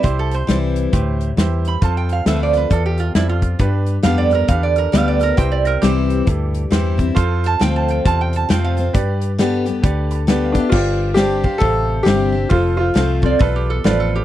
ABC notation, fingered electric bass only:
X:1
M:4/4
L:1/8
Q:"Swing" 1/4=135
K:Gmix
V:1 name="Fingered electric bass" clef=bass
C,,2 C,,2 D,,2 E,,2 | F,,2 D,,2 E,,2 F,,2 | G,,2 F,,2 E,,2 D,,2 | C,,2 C,,2 D,,2 E,,2 |
F,,2 D,,2 E,,2 F,,2 | G,,4 D,,4 | G,,,4 A,,,2 G,,,2 | F,,,2 C,,2 B,,,2 A,,,2 |]